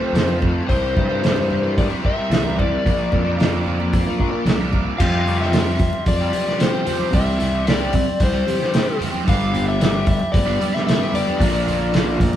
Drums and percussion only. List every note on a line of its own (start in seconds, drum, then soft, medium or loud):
0.15 snare loud
0.15 open hi-hat soft
0.29 high conga medium
0.42 kick medium
0.42 low conga medium
0.69 kick medium
0.69 open hi-hat soft
0.97 kick medium
0.97 high conga medium
0.97 low conga medium
1.24 snare loud
1.24 open hi-hat soft
1.36 high conga medium
1.50 low conga medium
1.78 kick loud
1.78 open hi-hat soft
1.91 high conga medium
2.05 kick medium
2.32 snare loud
2.32 open hi-hat soft
2.45 high conga medium
2.59 kick medium
2.59 low conga medium
2.85 kick medium
2.85 open hi-hat soft
2.85 low conga medium
3.12 kick medium
3.12 high conga medium
3.12 low conga medium
3.40 snare loud
3.40 open hi-hat soft
3.53 high conga medium
3.66 low conga medium
3.80 high conga medium
3.93 kick loud
3.93 open hi-hat medium
4.07 high conga medium
4.20 kick medium
4.46 snare loud
4.46 open hi-hat medium
4.60 high conga medium
4.73 kick medium
4.73 low conga medium
5.00 kick loud
5.00 crash medium
5.26 open hi-hat soft
5.26 low conga medium
5.42 snare soft
5.53 snare loud
5.53 open hi-hat medium
5.79 kick medium
5.79 open hi-hat soft
5.79 high conga medium
5.79 low conga medium
5.93 high conga medium
6.06 kick loud
6.06 open hi-hat medium
6.06 high conga medium
6.33 open hi-hat medium
6.33 high conga medium
6.49 snare soft
6.60 snare loud
6.60 open hi-hat medium
6.87 open hi-hat medium
6.87 low conga medium
7.00 high conga medium
7.13 kick loud
7.13 open hi-hat medium
7.40 open hi-hat soft
7.40 low conga medium
7.67 snare loud
7.67 open hi-hat medium
7.93 kick medium
7.93 open hi-hat medium
7.93 high conga medium
7.93 low conga medium
8.08 high conga medium
8.20 kick loud
8.20 open hi-hat medium
8.20 high conga medium
8.48 open hi-hat medium
8.48 high conga medium
8.62 snare soft
8.74 snare loud
8.74 open hi-hat medium
9.01 open hi-hat medium
9.01 low conga medium
9.14 high conga medium
9.28 kick medium
9.28 open hi-hat medium
9.55 open hi-hat soft
9.55 low conga medium
9.81 snare loud
9.81 open hi-hat medium
10.07 kick medium
10.07 open hi-hat soft
10.07 high conga medium
10.07 low conga medium
10.19 high conga medium
10.33 kick loud
10.33 open hi-hat medium
10.33 high conga medium
10.60 open hi-hat medium
10.60 high conga medium
10.76 snare soft
10.89 snare loud
10.89 open hi-hat medium
11.14 open hi-hat soft
11.14 low conga medium
11.27 high conga medium
11.40 kick loud
11.40 open hi-hat medium
11.67 open hi-hat soft
11.67 low conga medium
11.94 snare loud
11.94 open hi-hat medium
12.20 kick medium
12.20 open hi-hat medium
12.20 high conga medium
12.20 low conga medium
12.33 high conga medium